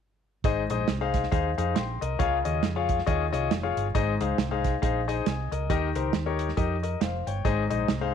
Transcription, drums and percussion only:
0.44 kick, closed hi-hat
0.70 closed hi-hat
0.88 snare, closed hi-hat
1.14 kick, snare, closed hi-hat
1.23 snare
1.32 kick, closed hi-hat
1.58 closed hi-hat
1.76 snare, closed hi-hat
2.02 closed hi-hat
2.20 kick, closed hi-hat
2.45 closed hi-hat
2.63 snare, closed hi-hat
2.89 kick, closed hi-hat
2.99 snare
3.07 kick, closed hi-hat
3.34 closed hi-hat
3.51 snare, closed hi-hat
3.77 closed hi-hat
3.95 kick, closed hi-hat
4.21 closed hi-hat
4.38 snare, closed hi-hat
4.64 kick, snare, closed hi-hat
4.83 kick, closed hi-hat
5.09 closed hi-hat
5.26 snare, closed hi-hat
5.52 closed hi-hat
5.70 kick, closed hi-hat
5.95 closed hi-hat
6.13 snare, closed hi-hat
6.39 closed hi-hat
6.48 snare
6.57 kick, closed hi-hat
6.83 closed hi-hat
7.01 snare, closed hi-hat
7.27 closed hi-hat
7.45 kick, closed hi-hat
7.71 closed hi-hat
7.88 snare, closed hi-hat

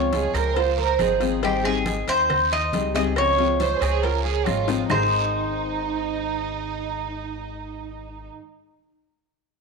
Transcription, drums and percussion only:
0.13 cowbell, high conga, short guiro
0.34 cowbell, high conga, short guiro, claves
0.56 cowbell, high conga, long guiro
0.79 high conga
0.99 cowbell, high conga, short guiro, claves
1.21 cowbell, high conga, short guiro
1.43 cowbell, high conga, long guiro
1.64 high conga, claves
1.86 cowbell, high conga, short guiro
2.08 cowbell, short guiro
2.30 cowbell, high conga, low conga, long guiro, claves
2.52 high conga
2.73 cowbell, high conga, short guiro
2.95 cowbell, short guiro
3.16 cowbell, high conga, long guiro, claves
3.38 high conga
3.60 cowbell, high conga, short guiro
3.82 cowbell, high conga, short guiro, claves
4.03 cowbell, high conga, long guiro
4.25 high conga
4.46 cowbell, high bongo, high conga, short guiro, claves
4.68 cowbell, low bongo, high conga, short guiro
4.90 low bongo, low conga, long guiro, claves

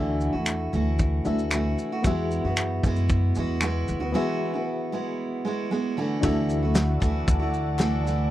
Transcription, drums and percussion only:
0.20 shaker
0.46 finger snap, clap, shaker
0.73 shaker
0.99 kick, shaker
1.25 shaker
1.39 shaker
1.51 finger snap, clap, shaker
1.78 shaker
2.04 kick, shaker
2.31 shaker
2.57 finger snap, clap, shaker
2.83 kick, shaker
2.96 shaker
3.09 kick, shaker
3.35 shaker
3.61 finger snap, clap, shaker
3.88 shaker
6.23 kick, shaker
6.50 shaker
6.75 snare, clap, shaker
7.02 kick, shaker
7.28 kick, shaker
7.54 shaker
7.79 snare, clap, shaker
8.06 snare, shaker

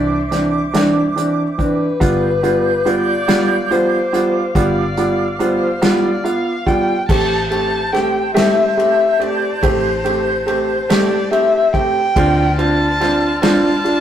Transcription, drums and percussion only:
0.32 snare, closed hi-hat
0.74 snare, closed hi-hat
1.18 closed hi-hat
1.59 kick, closed hi-hat
2.01 kick, closed hi-hat
2.44 closed hi-hat
2.86 closed hi-hat
3.29 snare, closed hi-hat
3.72 closed hi-hat
4.14 closed hi-hat
4.55 kick, closed hi-hat
4.97 closed hi-hat
5.40 closed hi-hat
5.82 snare, closed hi-hat
6.26 closed hi-hat
6.67 kick, closed hi-hat
7.09 kick, crash
7.52 ride
7.94 snare, ride
8.37 snare, ride
8.80 ride
9.21 ride
9.63 kick, ride
10.06 ride
10.48 ride
10.90 snare, ride
11.33 ride
11.74 kick, ride
12.16 kick, ride
12.59 ride
13.01 snare, ride
13.43 snare, ride
13.86 ride

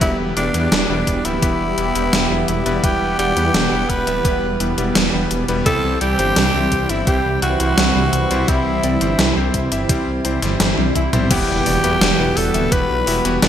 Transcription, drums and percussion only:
0.01 kick, closed hi-hat
0.37 closed hi-hat
0.54 closed hi-hat
0.72 snare, closed hi-hat
1.07 kick, closed hi-hat
1.25 closed hi-hat
1.42 kick, closed hi-hat
1.78 closed hi-hat
1.95 closed hi-hat
2.13 snare, closed hi-hat
2.48 closed hi-hat
2.66 closed hi-hat
2.84 kick, closed hi-hat
3.19 closed hi-hat
3.37 closed hi-hat
3.54 snare, closed hi-hat
3.89 kick, closed hi-hat
4.07 closed hi-hat
4.25 kick, closed hi-hat
4.60 closed hi-hat
4.78 closed hi-hat
4.95 snare, closed hi-hat
5.31 closed hi-hat
5.48 closed hi-hat
5.66 kick, closed hi-hat
6.01 closed hi-hat
6.19 closed hi-hat
6.36 snare, closed hi-hat
6.72 kick, closed hi-hat
6.89 closed hi-hat
7.07 kick, closed hi-hat
7.42 closed hi-hat
7.60 closed hi-hat
7.78 snare, closed hi-hat
8.13 closed hi-hat
8.31 closed hi-hat
8.48 kick, closed hi-hat
8.83 closed hi-hat
9.01 closed hi-hat
9.19 snare, closed hi-hat
9.54 kick, closed hi-hat
9.72 closed hi-hat
9.89 kick, closed hi-hat
10.25 closed hi-hat
10.42 snare, closed hi-hat
10.60 snare, closed hi-hat, high tom
10.78 high tom
10.95 kick, closed hi-hat
11.13 closed hi-hat, mid tom
11.31 kick, closed hi-hat, crash
11.66 open hi-hat
11.84 closed hi-hat
12.01 snare, closed hi-hat
12.37 open hi-hat
12.54 closed hi-hat
12.72 kick, closed hi-hat
13.07 open hi-hat
13.25 closed hi-hat
13.42 snare, closed hi-hat

